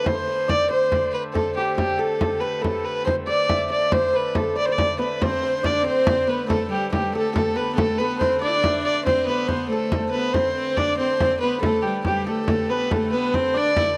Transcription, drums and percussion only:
0.06 frame drum medium
0.49 frame drum medium
0.71 frame drum soft
0.92 frame drum medium
1.35 frame drum medium
1.78 frame drum medium
1.99 frame drum soft
2.21 frame drum medium
2.64 frame drum medium
3.07 frame drum medium
3.28 frame drum soft
3.49 frame drum medium
3.92 frame drum medium
4.35 frame drum medium
4.78 frame drum medium
5.22 frame drum medium
5.64 frame drum medium
5.86 frame drum soft
6.07 frame drum loud
6.50 frame drum medium
6.93 frame drum medium
7.14 frame drum soft
7.36 frame drum medium
7.78 frame drum medium
8.21 frame drum medium
8.43 frame drum soft
8.64 frame drum medium
9.07 frame drum medium
9.28 frame drum soft
9.49 frame drum medium
9.92 frame drum medium
10.34 frame drum medium
10.77 frame drum medium
10.99 frame drum soft
11.20 frame drum medium
11.63 frame drum medium
12.05 frame drum medium
12.26 frame drum soft
12.48 frame drum medium
12.91 frame drum medium
13.34 frame drum medium
13.56 frame drum soft
13.76 frame drum medium

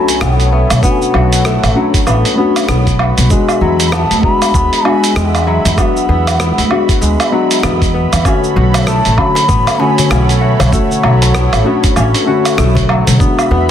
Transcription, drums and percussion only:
0.08 open hi-hat medium
0.08 shaker medium
0.21 cross-stick loud
0.21 low woodblock medium
0.21 shaker medium
0.40 open hi-hat soft
0.40 shaker soft
0.70 open hi-hat medium
0.70 low woodblock medium
0.70 shaker medium
0.83 kick loud
0.83 shaker medium
1.02 shaker soft
1.14 low woodblock medium
1.33 open hi-hat medium
1.33 shaker medium
1.45 cross-stick loud
1.45 shaker medium
1.64 open hi-hat soft
1.64 low woodblock medium
1.64 shaker soft
1.94 kick loud
1.94 open hi-hat medium
1.94 shaker medium
2.07 low woodblock medium
2.07 shaker medium
2.25 open hi-hat soft
2.25 shaker soft
2.56 open hi-hat medium
2.56 low woodblock medium
2.56 shaker medium
2.69 cross-stick loud
2.69 shaker medium
2.87 kick medium
2.87 open hi-hat soft
2.87 shaker soft
2.99 low woodblock medium
3.18 open hi-hat medium
3.18 shaker medium
3.30 kick loud
3.30 shaker medium
3.49 low woodblock medium
3.49 shaker soft
3.80 open hi-hat medium
3.80 shaker medium
3.92 cross-stick loud
3.92 low woodblock medium
3.92 shaker medium
4.11 open hi-hat soft
4.11 shaker soft
4.23 kick medium
4.42 open hi-hat medium
4.42 low woodblock medium
4.42 shaker medium
4.54 kick loud
4.54 shaker medium
4.73 open hi-hat soft
4.73 shaker soft
4.85 low woodblock medium
5.04 open hi-hat medium
5.04 shaker medium
5.16 cross-stick loud
5.16 shaker medium
5.35 open hi-hat soft
5.35 low woodblock medium
5.35 shaker soft
5.65 open hi-hat medium
5.65 shaker medium
5.78 kick loud
5.78 low woodblock medium
5.78 shaker medium
5.96 shaker soft
6.27 open hi-hat medium
6.27 low woodblock medium
6.27 shaker medium
6.40 cross-stick loud
6.40 shaker medium
6.58 open hi-hat soft
6.58 shaker soft
6.71 low woodblock medium
6.89 kick loud
6.89 open hi-hat medium
6.89 shaker medium
7.02 shaker medium
7.20 open hi-hat soft
7.20 low woodblock medium
7.20 shaker soft
7.51 open hi-hat medium
7.51 shaker medium
7.63 cross-stick medium
7.63 low woodblock medium
7.63 shaker medium
7.82 kick medium
7.82 open hi-hat soft
7.82 shaker soft
8.13 open hi-hat soft
8.13 low woodblock medium
8.13 shaker medium
8.25 kick loud
8.25 low woodblock medium
8.25 shaker medium
8.44 shaker soft
8.74 open hi-hat medium
8.74 darbuka ka medium
8.74 darbuka tek medium
8.74 low woodblock medium
8.74 shaker medium
8.87 cross-stick loud
8.87 shaker medium
9.05 open hi-hat soft
9.05 shaker soft
9.18 kick medium
9.18 low woodblock medium
9.35 open hi-hat medium
9.35 darbuka tek medium
9.35 shaker medium
9.49 kick loud
9.49 shaker medium
9.67 open hi-hat soft
9.67 darbuka ka medium
9.67 low woodblock medium
9.67 shaker soft
9.80 darbuka tek medium
9.98 open hi-hat medium
9.98 darbuka dum medium
9.98 shaker medium
10.11 cross-stick medium
10.11 low woodblock medium
10.11 shaker medium
10.29 open hi-hat soft
10.29 shaker soft
10.60 open hi-hat medium
10.60 darbuka tek soft
10.60 darbuka dum loud
10.60 low woodblock medium
10.60 shaker medium
10.73 kick loud
10.73 shaker medium
10.91 darbuka ka soft
10.91 shaker soft
11.03 low woodblock medium
11.22 open hi-hat medium
11.22 darbuka ka soft
11.22 darbuka tek medium
11.22 shaker medium
11.35 cross-stick loud
11.35 shaker medium
11.53 open hi-hat soft
11.53 low woodblock medium
11.53 shaker soft
11.84 kick loud
11.84 open hi-hat medium
11.84 darbuka tek medium
11.84 shaker medium
11.96 low woodblock medium
11.96 shaker medium
12.14 open hi-hat soft
12.14 darbuka tek soft
12.14 shaker soft
12.45 open hi-hat medium
12.45 low woodblock medium
12.45 shaker medium
12.58 cross-stick loud
12.58 shaker medium
12.75 kick medium
12.75 open hi-hat soft
12.75 darbuka dum medium
12.75 shaker soft
12.89 low woodblock medium
13.07 open hi-hat medium
13.07 darbuka dum medium
13.07 shaker medium
13.20 kick loud
13.20 shaker medium
13.39 low woodblock medium
13.39 shaker soft

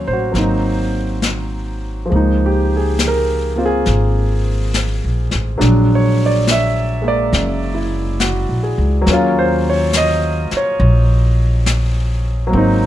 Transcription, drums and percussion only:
0.35 brush sweep soft
0.35 snare soft
1.22 snare soft
1.22 hi-hat pedal soft
2.12 brush sweep soft
2.99 snare soft
2.99 hi-hat pedal soft
3.86 brush sweep soft
3.86 snare soft
4.74 snare soft
4.74 hi-hat pedal medium
5.31 snare soft
5.61 brush sweep soft
5.61 snare soft
6.47 snare soft
6.47 hi-hat pedal medium
7.33 brush sweep soft
7.33 snare soft
8.20 snare soft
8.20 hi-hat pedal soft
9.07 brush sweep soft
9.07 snare soft
9.93 snare soft
9.93 hi-hat pedal medium
10.51 snare soft
10.80 brush sweep soft
11.66 snare soft
11.66 hi-hat pedal soft
12.54 brush sweep soft

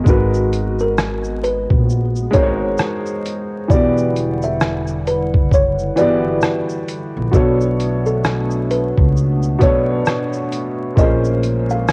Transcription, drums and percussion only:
0.06 kick loud
0.06 shaker medium
0.34 shaker soft
0.53 closed hi-hat medium
0.53 shaker soft
0.79 shaker soft
0.98 cross-stick loud
0.98 shaker medium
1.24 shaker soft
1.44 closed hi-hat medium
1.44 shaker soft
1.70 kick medium
1.90 shaker medium
2.16 shaker soft
2.33 kick medium
2.33 closed hi-hat medium
2.33 shaker soft
2.78 cross-stick medium
2.78 shaker medium
3.06 shaker soft
3.26 closed hi-hat medium
3.26 shaker medium
3.70 kick loud
3.70 shaker medium
3.98 shaker soft
4.16 closed hi-hat medium
4.16 shaker medium
4.42 shaker soft
4.61 cross-stick loud
4.61 shaker medium
4.87 shaker soft
5.07 closed hi-hat medium
5.07 shaker soft
5.34 kick medium
5.51 kick medium
5.51 shaker medium
5.79 shaker soft
5.97 closed hi-hat medium
5.97 shaker soft
6.42 cross-stick loud
6.42 shaker medium
6.70 shaker soft
6.89 closed hi-hat medium
6.89 shaker medium
7.33 kick loud
7.33 shaker medium
7.61 shaker soft
7.80 closed hi-hat medium
7.80 shaker medium
8.06 shaker soft
8.25 cross-stick loud
8.25 shaker medium
8.51 shaker soft
8.71 closed hi-hat medium
8.71 shaker soft
8.97 kick medium
9.17 shaker medium
9.43 shaker soft
9.61 kick medium
9.61 closed hi-hat medium
9.61 shaker soft
10.06 cross-stick loud
10.06 shaker medium
10.33 shaker soft
10.52 closed hi-hat medium
10.52 shaker medium
10.97 kick loud
10.97 shaker medium
11.24 shaker soft
11.43 closed hi-hat medium
11.43 shaker soft
11.70 shaker soft
11.88 cross-stick loud
11.88 shaker medium

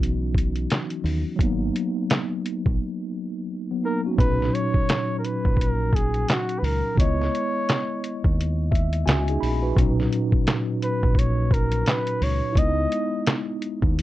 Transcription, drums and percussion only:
0.03 closed hi-hat medium
0.34 kick medium
0.34 closed hi-hat medium
0.56 closed hi-hat soft
0.70 snare loud
0.70 clap medium
0.70 closed hi-hat medium
0.90 closed hi-hat soft
1.06 open hi-hat soft
1.39 kick loud
1.39 closed hi-hat medium
1.76 closed hi-hat medium
2.10 snare loud
2.10 clap medium
2.10 closed hi-hat medium
2.46 closed hi-hat medium
2.66 kick medium
4.18 kick loud
4.18 closed hi-hat medium
4.42 snare soft
4.55 closed hi-hat medium
4.74 kick medium
4.89 snare loud
4.89 clap loud
4.89 closed hi-hat medium
5.25 closed hi-hat medium
5.45 kick medium
5.57 kick medium
5.61 closed hi-hat medium
5.93 kick medium
5.93 closed hi-hat medium
6.14 closed hi-hat medium
6.28 snare loud
6.28 clap medium
6.28 closed hi-hat medium
6.49 closed hi-hat soft
6.64 open hi-hat soft
6.98 kick loud
6.98 closed hi-hat medium
7.22 snare soft
7.35 closed hi-hat medium
7.69 snare loud
7.69 clap medium
7.69 closed hi-hat medium
8.04 closed hi-hat medium
8.24 kick medium
8.41 closed hi-hat medium
8.72 kick medium
8.72 closed hi-hat medium
8.93 closed hi-hat medium
9.08 snare loud
9.08 clap medium
9.08 closed hi-hat medium
9.28 closed hi-hat medium
9.43 open hi-hat soft
9.77 kick loud
9.77 closed hi-hat medium
10.00 snare soft
10.13 closed hi-hat medium
10.32 kick loud
10.47 snare loud
10.47 clap medium
10.47 closed hi-hat medium
10.82 closed hi-hat medium
11.03 kick loud
11.15 kick medium
11.15 closed hi-hat medium
11.51 kick loud
11.51 closed hi-hat medium
11.72 closed hi-hat medium
11.86 snare loud
11.86 clap medium
11.86 closed hi-hat medium
12.07 closed hi-hat soft
12.22 open hi-hat soft
12.55 kick loud
12.55 closed hi-hat medium
12.92 closed hi-hat medium
13.27 snare loud
13.27 clap medium
13.27 closed hi-hat medium
13.62 closed hi-hat medium
13.82 kick loud
13.99 closed hi-hat medium

